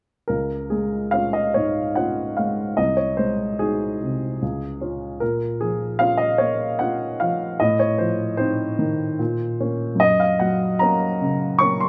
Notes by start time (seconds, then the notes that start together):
0.28 C#2 A#4
0.70 G#3 G#4
1.11 C#4 F4 F5
1.33 D#5
1.54 G#2 C#5
1.95 C#4 F4 F#5
2.37 G#3 F5
2.77 C2 D#5
2.97 C#5
3.17 G#3 C5
3.59 D#4 F#4 G#4
4.03 C3
4.42 C#2
4.81 C#4 F4
5.20 A#2 A#4
5.61 F3 G#4
5.99 C#4 F4 F5
6.17 D#5
6.38 A#3 C#5
6.79 C#4 F4 F#5
7.20 F3 F5
7.60 A2 D#5
7.80 C#5
7.98 F3 C5
8.37 C4 D#4 C5
8.79 D#3
9.19 A#2
9.60 A#3 C#4
9.95 F#2
10.00 D#5
10.20 F5
10.39 F#3 F#5
10.79 A#3 C#4 A#5
11.21 C#3
11.59 A#3 C#4 C#6
11.80 C6